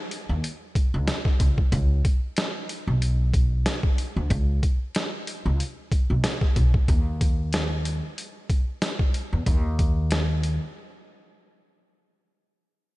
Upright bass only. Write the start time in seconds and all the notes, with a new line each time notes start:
0.29 D#2
0.94 C#2
1.40 C#2
1.73 C#2
2.87 B1
4.16 D2
4.31 C#2
5.46 C#2
6.10 B1
6.57 B1
6.89 D#2
9.33 E2
9.47 D#2